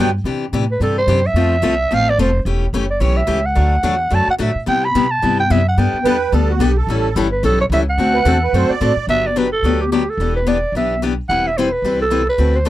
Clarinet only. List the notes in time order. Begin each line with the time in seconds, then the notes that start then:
0.71 B4
0.83 A4
0.98 C5
1.26 E5
1.94 F5
2.09 D5
2.21 C5
2.90 D5
3.00 C#5
3.17 E5
3.45 F#5
4.14 A5
4.30 F#5
4.42 E5
4.68 G5
4.84 B5
5.11 A5
5.40 G5
5.51 E5
5.69 F#5
5.78 G5
7.32 B4
7.45 A4
7.61 C#5
7.74 E5
7.90 F#5
9.10 E5
9.26 D5
9.37 B4
9.52 A4
9.81 G4
9.91 G4
10.10 A4
10.36 B4
10.48 D5
10.76 E5
11.29 F#5
11.47 E5
11.57 C5
11.72 B4
12.01 A4
12.29 B4
12.55 C5